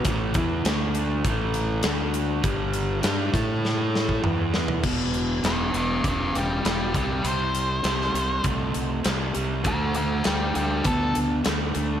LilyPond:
<<
  \new Staff \with { instrumentName = "Lead electric guitar" } { \time 4/4 \key e \minor \tempo 4 = 100 r1 | r1 | r4 <b' d''>8 <b' d''>8 <b' d''>8 <d' b'>8 <d' b'>8 <d' b'>8 | c''2 r2 |
<fis' d''>8 <fis' d''>8 <d' b'>8 <d' b'>8 a'8 r4. | }
  \new Staff \with { instrumentName = "Overdriven electric guitar" } { \clef bass \time 4/4 \key e \minor <a, e a>8 <e b e'>8 <d a d'>4 <a, e a>4 <d a d'>4 | <g, d g>4 <g d' g'>8 <a e' a'>4. <e b e'>4 | <e, b,>4 <e, b,>8 <e, b,>8 <e, cis>4 <e, b,>8 <c g>8 | <c g>4 <c g>8 <c g>8 <c a>4 <c g>8 <c g>8 |
<d a>4 <d a>8 <d a>8 <d b>4 <d a>8 <d a>8 | }
  \new Staff \with { instrumentName = "Fingered electric bass" } { \clef bass \time 4/4 \key e \minor a,,8 e,8 d,4 a,,4 d,4 | g,,4 g,8 a,4. e,4 | e,,4 e,,8 e,,8 e,,8 e,,8 e,,8 c,8 | c,4 c,8 c,8 c,8 c,8 c,8 c,8 |
d,4 d,8 d,8 d,8 d,8 d,8 d,8 | }
  \new DrumStaff \with { instrumentName = "Drums" } \drummode { \time 4/4 <hh bd>8 <hh bd>8 <hh sn>8 hh8 <hh bd>8 hh8 <hh sn>8 hh8 | <hh bd>8 hh8 <hh sn>8 <hh bd sn>8 sn8 sn16 bd16 toml8 sn16 tomfh16 | <cymc bd>8 hh8 <hh sn>8 hh8 <hh bd>8 hh8 <hh sn>8 <hh bd>8 | hh8 hh8 <hh sn>16 sn16 hh8 <hh bd>8 hh8 <hh sn>8 hh8 |
<hh bd>8 hh8 <hh sn>8 hh8 <hh bd>8 hh8 <hh sn>8 hh8 | }
>>